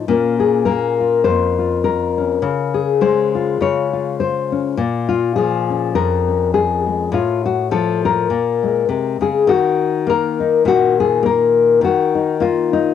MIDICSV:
0, 0, Header, 1, 2, 480
1, 0, Start_track
1, 0, Tempo, 587084
1, 59, Time_signature, 4, 2, 24, 8
1, 10581, End_track
2, 0, Start_track
2, 0, Title_t, "Nylon-string guitar"
2, 0, Program_c, 0, 24
2, 66, Note_on_c, 0, 46, 67
2, 73, Note_on_c, 0, 58, 45
2, 77, Note_on_c, 0, 61, 42
2, 84, Note_on_c, 0, 65, 42
2, 90, Note_on_c, 0, 70, 43
2, 320, Note_off_c, 0, 65, 0
2, 324, Note_on_c, 0, 68, 69
2, 523, Note_off_c, 0, 70, 0
2, 532, Note_off_c, 0, 58, 0
2, 533, Note_on_c, 0, 70, 78
2, 541, Note_on_c, 0, 58, 54
2, 805, Note_off_c, 0, 68, 0
2, 820, Note_on_c, 0, 65, 39
2, 1012, Note_off_c, 0, 70, 0
2, 1015, Note_on_c, 0, 72, 94
2, 1020, Note_on_c, 0, 41, 52
2, 1024, Note_off_c, 0, 46, 0
2, 1293, Note_off_c, 0, 65, 0
2, 1296, Note_on_c, 0, 65, 39
2, 1499, Note_off_c, 0, 72, 0
2, 1505, Note_on_c, 0, 70, 71
2, 1777, Note_off_c, 0, 61, 0
2, 1780, Note_on_c, 0, 61, 40
2, 1958, Note_off_c, 0, 58, 0
2, 1976, Note_off_c, 0, 41, 0
2, 1979, Note_on_c, 0, 49, 68
2, 1984, Note_off_c, 0, 70, 0
2, 2240, Note_off_c, 0, 65, 0
2, 2243, Note_on_c, 0, 68, 69
2, 2463, Note_on_c, 0, 56, 58
2, 2467, Note_on_c, 0, 72, 83
2, 2491, Note_off_c, 0, 61, 0
2, 2726, Note_off_c, 0, 68, 0
2, 2739, Note_on_c, 0, 65, 42
2, 2938, Note_off_c, 0, 49, 0
2, 2946, Note_off_c, 0, 72, 0
2, 2948, Note_on_c, 0, 49, 51
2, 2959, Note_on_c, 0, 73, 94
2, 3211, Note_off_c, 0, 65, 0
2, 3215, Note_on_c, 0, 65, 38
2, 3430, Note_off_c, 0, 73, 0
2, 3433, Note_on_c, 0, 72, 73
2, 3696, Note_on_c, 0, 61, 42
2, 3881, Note_off_c, 0, 56, 0
2, 3883, Note_off_c, 0, 49, 0
2, 3884, Note_off_c, 0, 61, 0
2, 3903, Note_on_c, 0, 46, 70
2, 3911, Note_off_c, 0, 72, 0
2, 4159, Note_off_c, 0, 65, 0
2, 4159, Note_on_c, 0, 65, 69
2, 4377, Note_off_c, 0, 65, 0
2, 4380, Note_on_c, 0, 68, 88
2, 4394, Note_on_c, 0, 53, 57
2, 4660, Note_on_c, 0, 61, 41
2, 4863, Note_off_c, 0, 68, 0
2, 4865, Note_on_c, 0, 41, 57
2, 4866, Note_on_c, 0, 70, 95
2, 4867, Note_off_c, 0, 46, 0
2, 5126, Note_off_c, 0, 61, 0
2, 5136, Note_on_c, 0, 61, 37
2, 5343, Note_off_c, 0, 70, 0
2, 5346, Note_on_c, 0, 68, 85
2, 5612, Note_on_c, 0, 56, 40
2, 5806, Note_off_c, 0, 61, 0
2, 5808, Note_off_c, 0, 53, 0
2, 5816, Note_off_c, 0, 41, 0
2, 5819, Note_on_c, 0, 45, 63
2, 5829, Note_off_c, 0, 56, 0
2, 5829, Note_off_c, 0, 68, 0
2, 5837, Note_on_c, 0, 65, 72
2, 6092, Note_off_c, 0, 65, 0
2, 6096, Note_on_c, 0, 66, 76
2, 6306, Note_on_c, 0, 53, 58
2, 6307, Note_off_c, 0, 66, 0
2, 6310, Note_on_c, 0, 69, 78
2, 6575, Note_off_c, 0, 69, 0
2, 6582, Note_on_c, 0, 70, 78
2, 6759, Note_off_c, 0, 45, 0
2, 6763, Note_off_c, 0, 53, 0
2, 6785, Note_on_c, 0, 46, 61
2, 7057, Note_on_c, 0, 56, 39
2, 7263, Note_off_c, 0, 46, 0
2, 7266, Note_on_c, 0, 48, 55
2, 7525, Note_off_c, 0, 48, 0
2, 7528, Note_on_c, 0, 49, 50
2, 7536, Note_off_c, 0, 70, 0
2, 7539, Note_on_c, 0, 68, 80
2, 7744, Note_on_c, 0, 51, 71
2, 7747, Note_off_c, 0, 49, 0
2, 7751, Note_off_c, 0, 56, 0
2, 7752, Note_off_c, 0, 68, 0
2, 7759, Note_on_c, 0, 66, 89
2, 8230, Note_on_c, 0, 58, 60
2, 8234, Note_off_c, 0, 66, 0
2, 8254, Note_on_c, 0, 70, 94
2, 8504, Note_on_c, 0, 63, 47
2, 8708, Note_on_c, 0, 46, 61
2, 8720, Note_off_c, 0, 70, 0
2, 8730, Note_on_c, 0, 66, 97
2, 8982, Note_off_c, 0, 66, 0
2, 8994, Note_on_c, 0, 68, 86
2, 9170, Note_off_c, 0, 58, 0
2, 9180, Note_on_c, 0, 58, 58
2, 9198, Note_off_c, 0, 68, 0
2, 9204, Note_on_c, 0, 70, 97
2, 9635, Note_off_c, 0, 58, 0
2, 9644, Note_off_c, 0, 63, 0
2, 9646, Note_off_c, 0, 51, 0
2, 9656, Note_on_c, 0, 51, 71
2, 9664, Note_off_c, 0, 46, 0
2, 9673, Note_off_c, 0, 70, 0
2, 9683, Note_on_c, 0, 66, 83
2, 9933, Note_on_c, 0, 63, 46
2, 10139, Note_on_c, 0, 58, 64
2, 10147, Note_off_c, 0, 66, 0
2, 10150, Note_on_c, 0, 65, 91
2, 10398, Note_off_c, 0, 63, 0
2, 10408, Note_on_c, 0, 63, 77
2, 10581, Note_off_c, 0, 51, 0
2, 10581, Note_off_c, 0, 58, 0
2, 10581, Note_off_c, 0, 63, 0
2, 10581, Note_off_c, 0, 65, 0
2, 10581, End_track
0, 0, End_of_file